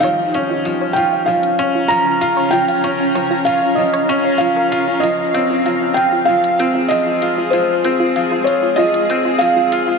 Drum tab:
HH |x-x-x-x--xx-x-x-|xxx-x-x--xx-x-x-|x-x-x-x--xx-x-x-|x-x-x-x--xx-x-x-|